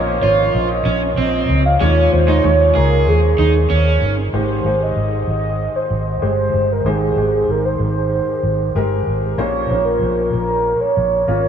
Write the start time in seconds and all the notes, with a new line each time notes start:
Already playing: A#1 A#2 F3 A#3 C#4 C5 C#5 D#5
0.22 G#1 F4 C#5
0.54 A#1 D#5
0.85 A#1 C#4
1.17 A#1 C4 D#5
1.49 C#2
1.65 F5
1.80 D#2 A#2 G#3 C#4 D#4 C#5
2.12 D#2 C5
2.27 G#3 D#4 C#5
2.44 D#2 G#3 D#4 C#5
2.75 C#2 G#4 A#4
3.07 D#2 G#4
3.38 D#2 D#4
3.70 D#2 C#4
4.01 G1
4.33 G#1 G#2 D#3 G#3 G4 C5
4.64 G#1 G#3 G4 C5
4.82 D#5
4.96 G#1
5.27 G#1 D#5
5.76 C5
5.90 G#1
6.22 G1 G#3 G4 C5
6.53 G1
6.72 A#4
6.84 G#1 G#2 D#3 G#3 G4 C5
6.88 G#4
7.16 G#1 G#3 G4 C5
7.35 G#4
7.47 G#1 A#4
7.65 C5
7.79 G#1 C5
8.43 G#1
8.75 G1 G#3 G4 A#4
9.07 G#1
9.38 A#1 A#2 F3 A#3 C#4 C5 C#5
9.70 A#1 A#3 C#4 C5
9.85 A#4
10.02 A#1
10.33 A#1 A#4
10.80 C#5
10.97 A#1
11.27 G#1 A#3 C#4 F4 C#5